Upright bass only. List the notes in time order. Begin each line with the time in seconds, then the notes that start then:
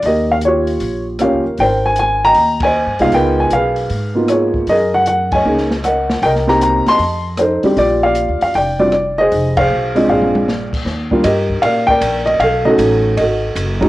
0.03 D#2
0.81 A#1
1.33 C#2
1.46 D#2
1.59 G#1
2.35 D#2
2.87 G2
2.99 C2
3.12 C#2
3.51 B1
3.90 G#2
4.67 F#2
5.45 C#2
6.22 C2
6.86 muted upright bass stroke
6.99 F2
7.63 muted upright bass stroke
7.76 A#1
8.28 D2
8.42 F2
8.55 F1
9.32 F1
9.70 B1
10.08 A#1
10.85 D#2
11.25 G2
11.63 A#2
12.01 A#1
12.40 B1
12.78 A1
13.17 G#1
13.55 F#1